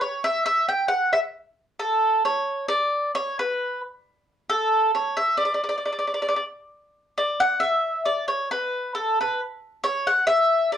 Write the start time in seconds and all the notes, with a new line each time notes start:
0.01 C#5
0.24 E5
0.46 E5
0.69 G5
0.89 F#5
1.13 E5
1.80 A4
2.25 C#5
2.69 D5
3.15 C#5
3.39 B4
4.49 A4
4.95 C#5
5.17 E5
5.37 D5
5.45 D5
5.54 D5
5.64 D5
5.69 D5
5.78 D5
5.86 D5
5.93 D5
5.99 D5
6.07 D5
6.14 D5
6.22 D5
6.29 D5
6.36 D5
7.18 D5
7.40 F#5
7.60 E5
8.05 D5
8.28 C#5
8.51 B4
8.95 A4
9.21 B4
9.84 C#5
10.07 F#5
10.27 E5
10.72 D5